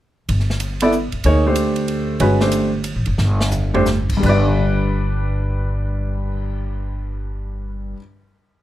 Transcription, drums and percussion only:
0.29 ride medium
0.40 snare soft
0.50 snare soft
0.60 hi-hat pedal soft
0.60 ride medium
0.80 ride medium
0.92 hi-hat pedal medium
1.12 ride soft
1.24 ride medium
1.55 hi-hat pedal medium
1.55 ride medium
1.76 ride soft
1.88 ride medium
2.20 ride medium
2.40 snare medium
2.51 hi-hat pedal medium
2.51 ride medium
2.84 hi-hat pedal soft
2.84 ride medium
3.06 ride soft
3.18 snare soft
3.41 snare medium
3.51 floor tom medium
3.51 hi-hat pedal medium
3.75 floor tom medium
3.86 snare soft
3.86 hi-hat pedal medium
4.10 kick medium
4.10 crash medium
4.23 kick medium
4.23 crash medium
4.47 cymbal swell soft

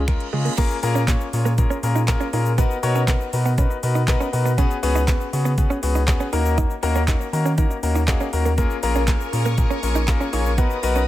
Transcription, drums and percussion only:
0.08 finger snap loud
0.08 kick loud
0.08 closed hi-hat medium
0.20 closed hi-hat soft
0.46 closed hi-hat soft
0.58 kick loud
0.58 closed hi-hat medium
0.58 crash loud
0.58 shaker medium
0.71 shaker soft
0.83 open hi-hat medium
0.83 shaker medium
0.95 shaker medium
1.08 kick loud
1.08 snare medium
1.08 clap loud
1.08 clap medium
1.08 closed hi-hat medium
1.08 shaker medium
1.21 shaker soft
1.33 open hi-hat medium
1.33 shaker medium
1.46 shaker medium
1.58 kick loud
1.58 closed hi-hat medium
1.58 shaker medium
1.71 shaker medium
1.83 open hi-hat medium
1.83 shaker medium
1.96 shaker medium
2.08 kick loud
2.08 snare medium
2.08 clap loud
2.08 clap medium
2.08 closed hi-hat medium
2.08 shaker medium
2.21 shaker medium
2.33 open hi-hat medium
2.33 shaker soft
2.46 shaker medium
2.58 kick loud
2.58 closed hi-hat medium
2.58 shaker medium
2.71 shaker medium
2.83 open hi-hat medium
2.83 shaker medium
2.95 shaker medium
3.08 kick loud
3.08 snare loud
3.08 clap medium
3.08 clap loud
3.08 closed hi-hat medium
3.08 shaker medium
3.21 shaker soft
3.33 open hi-hat medium
3.33 shaker medium
3.46 shaker medium
3.58 kick loud
3.58 closed hi-hat medium
3.58 shaker medium
3.71 shaker medium
3.83 open hi-hat medium
3.83 shaker medium
3.95 shaker medium
4.08 kick loud
4.08 snare medium
4.08 clap loud
4.08 clap medium
4.08 closed hi-hat medium
4.08 shaker medium
4.21 shaker medium
4.33 open hi-hat medium
4.33 shaker soft
4.46 shaker medium
4.58 kick loud
4.58 closed hi-hat medium
4.58 shaker medium
4.71 shaker medium
4.83 open hi-hat medium
4.83 shaker medium
4.95 shaker medium
5.08 kick loud
5.08 snare loud
5.08 clap loud
5.08 clap medium
5.08 closed hi-hat medium
5.08 shaker medium
5.21 shaker soft
5.33 open hi-hat medium
5.33 shaker medium
5.46 shaker medium
5.58 kick loud
5.58 closed hi-hat medium
5.58 shaker medium
5.71 shaker soft
5.83 open hi-hat medium
5.83 shaker medium
5.95 shaker medium
6.08 kick loud
6.08 snare medium
6.08 clap loud
6.08 clap medium
6.08 closed hi-hat medium
6.08 shaker medium
6.20 shaker soft
6.33 open hi-hat medium
6.33 shaker soft
6.46 shaker medium
6.58 kick loud
6.58 closed hi-hat medium
6.58 shaker medium
6.70 shaker medium
6.83 open hi-hat medium
6.83 shaker medium
6.95 shaker medium
7.08 kick loud
7.08 snare medium
7.08 clap medium
7.08 clap loud
7.08 closed hi-hat medium
7.08 shaker medium
7.21 shaker soft
7.33 open hi-hat medium
7.33 shaker medium
7.46 shaker medium
7.58 kick loud
7.58 closed hi-hat medium
7.58 shaker medium
7.71 shaker medium
7.83 open hi-hat medium
7.83 shaker medium
7.95 shaker medium
8.08 kick loud
8.08 snare medium
8.08 clap loud
8.08 clap medium
8.08 closed hi-hat medium
8.08 shaker medium
8.20 shaker medium
8.33 open hi-hat medium
8.33 shaker soft
8.45 shaker medium
8.58 kick loud
8.58 closed hi-hat medium
8.58 shaker medium
8.70 shaker medium
8.83 open hi-hat medium
8.83 shaker medium
8.95 shaker medium
9.08 kick loud
9.08 snare loud
9.08 clap loud
9.08 clap medium
9.08 closed hi-hat medium
9.08 shaker medium
9.21 shaker soft
9.33 open hi-hat medium
9.33 shaker medium
9.45 shaker medium
9.58 kick loud
9.58 closed hi-hat medium
9.58 shaker medium
9.71 shaker soft
9.83 open hi-hat medium
9.83 shaker medium
9.95 shaker medium
10.08 kick loud
10.08 snare medium
10.08 clap loud
10.08 clap medium
10.08 closed hi-hat medium
10.08 shaker medium
10.21 shaker medium
10.33 open hi-hat medium
10.33 shaker soft
10.46 shaker medium
10.58 kick loud
10.58 closed hi-hat medium
10.58 shaker medium
10.70 shaker medium
10.83 open hi-hat medium
10.83 shaker medium
10.96 shaker medium

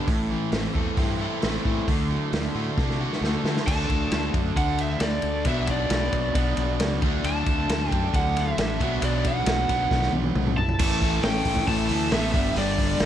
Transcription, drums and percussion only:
0.07 kick loud
0.07 open hi-hat soft
0.52 snare loud
0.52 open hi-hat soft
0.75 kick medium
0.97 kick loud
0.97 open hi-hat soft
1.42 snare loud
1.42 open hi-hat soft
1.65 kick medium
1.88 kick loud
1.88 open hi-hat soft
2.33 snare loud
2.33 open hi-hat soft
2.78 kick loud
2.78 snare medium
2.91 snare soft
3.13 snare medium
3.24 snare medium
3.45 snare medium
3.57 snare medium
3.67 kick loud
3.67 crash loud
3.90 kick medium
3.90 ride medium
4.12 snare loud
4.12 ride medium
4.34 kick medium
4.34 ride medium
4.56 kick medium
4.56 ride medium
4.78 ride medium
5.00 snare loud
5.00 ride medium
5.22 ride medium
5.45 kick loud
5.45 ride medium
5.67 kick medium
5.67 ride medium
5.90 snare loud
5.90 ride medium
6.13 kick medium
6.13 ride medium
6.35 kick medium
6.35 ride medium
6.57 ride medium
6.80 snare loud
6.80 ride medium
7.02 kick loud
7.02 ride medium
7.24 ride medium
7.46 kick medium
7.46 ride medium
7.69 snare loud
7.69 ride medium
7.92 kick medium
7.92 ride medium
8.14 kick medium
8.14 ride medium
8.37 snare soft
8.37 ride medium
8.58 snare loud
8.58 ride medium
8.80 kick medium
8.80 ride medium
9.02 ride medium
9.25 kick medium
9.25 ride medium
9.46 snare loud
9.46 ride loud
9.69 kick medium
9.69 ride medium
9.91 kick medium
9.91 snare medium
10.02 snare medium
10.12 high tom medium
10.24 high tom medium
10.35 mid tom medium
10.47 mid tom medium
10.58 floor tom medium
10.69 floor tom medium
10.79 kick loud
10.79 crash loud
11.02 kick medium
11.02 open hi-hat medium
11.23 snare loud
11.23 open hi-hat medium
11.45 kick medium
11.45 snare soft
11.45 open hi-hat medium
11.57 kick medium
11.57 snare soft
11.67 kick loud
11.67 open hi-hat medium
11.89 open hi-hat medium
12.11 snare loud
12.11 open hi-hat medium
12.34 kick loud
12.34 open hi-hat medium
12.56 open hi-hat medium
12.78 kick medium
12.78 open hi-hat medium
13.00 snare loud
13.00 open hi-hat medium

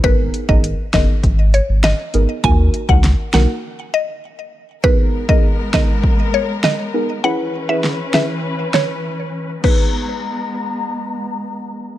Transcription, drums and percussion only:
0.04 kick loud
0.04 closed hi-hat medium
0.34 closed hi-hat soft
0.49 kick medium
0.64 closed hi-hat medium
0.94 kick loud
0.94 cross-stick medium
0.94 snare loud
0.94 closed hi-hat medium
1.23 kick medium
1.23 closed hi-hat medium
1.54 closed hi-hat soft
1.84 cross-stick medium
1.84 snare loud
1.84 closed hi-hat medium
2.14 closed hi-hat medium
2.44 kick loud
2.44 closed hi-hat medium
2.74 closed hi-hat medium
2.89 kick medium
3.04 snare medium
3.04 closed hi-hat medium
3.34 cross-stick medium
3.34 snare loud
3.34 closed hi-hat medium
4.84 kick loud
5.29 kick loud
5.74 kick medium
5.74 cross-stick medium
5.74 snare loud
6.04 kick medium
6.64 cross-stick medium
6.64 snare loud
7.84 snare medium
8.14 cross-stick medium
8.14 snare loud
8.74 cross-stick medium
8.74 snare medium
9.64 kick loud
9.64 crash medium

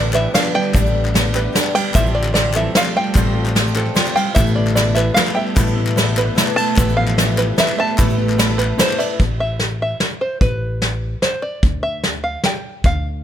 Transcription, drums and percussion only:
0.13 clap loud
0.13 shaker soft
0.35 snare medium
0.35 ride medium
0.35 shaker medium
0.43 clap medium
0.63 clap soft
0.74 kick loud
0.74 clap medium
0.74 ride medium
0.74 shaker medium
0.86 shaker soft
1.05 clap medium
1.15 snare medium
1.15 clap soft
1.15 ride medium
1.15 shaker medium
1.35 clap loud
1.35 shaker soft
1.55 snare loud
1.55 ride medium
1.55 shaker medium
1.64 clap medium
1.75 ride medium
1.85 clap soft
1.94 kick loud
1.94 clap loud
1.94 ride medium
1.94 shaker loud
2.06 shaker soft
2.23 clap medium
2.34 snare medium
2.34 clap soft
2.34 ride medium
2.34 shaker medium
2.54 clap loud
2.54 shaker soft
2.75 snare loud
2.75 ride medium
2.75 shaker medium
2.84 clap medium
3.05 clap soft
3.15 kick loud
3.15 clap loud
3.15 ride medium
3.15 shaker loud
3.26 clap soft
3.46 clap medium
3.46 shaker soft
3.56 snare medium
3.56 clap soft
3.56 ride medium
3.56 shaker medium
3.68 shaker soft
3.76 clap loud
3.87 clap soft
3.96 snare medium
3.96 clap soft
3.96 ride medium
3.96 shaker medium
4.06 clap medium
4.06 shaker soft
4.16 clap soft
4.16 ride medium
4.36 kick loud
4.36 clap loud
4.36 ride medium
4.36 shaker loud
4.47 shaker soft
4.67 clap medium
4.77 snare medium
4.77 clap soft
4.77 ride medium
4.77 shaker medium
4.97 clap loud
4.97 shaker soft
5.16 snare loud
5.16 ride medium
5.16 shaker medium
5.27 clap medium
5.48 clap soft
5.57 kick loud
5.57 clap loud
5.57 ride medium
5.57 shaker medium
5.67 shaker soft
5.87 clap medium
5.97 snare medium
5.97 clap soft
5.97 ride medium
5.97 shaker medium
6.17 clap loud
6.17 shaker soft
6.38 snare medium
6.38 ride medium
6.38 shaker medium
6.47 clap medium
6.57 ride medium
6.67 clap soft
6.77 kick loud
6.77 clap medium
6.77 ride medium
6.77 shaker loud
6.89 shaker soft
7.08 clap medium
7.18 snare medium
7.18 clap soft
7.18 ride medium
7.18 shaker medium
7.38 clap medium
7.38 shaker soft
7.58 snare loud
7.58 ride medium
7.58 shaker medium
7.68 clap medium
7.89 clap soft
7.98 kick loud
7.98 clap loud
7.98 ride medium
7.98 shaker loud
8.10 shaker soft
8.19 clap soft
8.29 clap medium
8.39 snare medium
8.39 ride medium
8.39 shaker medium
8.50 clap soft
8.60 clap medium
8.79 snare loud
8.79 ride medium
8.79 shaker medium
8.89 clap medium
9.00 clap soft
9.00 ride medium
9.00 shaker soft
9.20 kick medium
9.20 closed hi-hat medium
9.59 snare medium
9.59 closed hi-hat medium
10.00 snare medium
10.00 closed hi-hat medium
10.41 kick medium
10.41 closed hi-hat medium
10.82 snare medium
10.82 closed hi-hat soft
11.22 snare medium
11.22 closed hi-hat medium
11.63 kick medium
11.63 closed hi-hat soft
12.04 snare medium
12.04 closed hi-hat medium
12.44 snare medium
12.44 closed hi-hat medium
12.84 kick loud
12.84 closed hi-hat medium

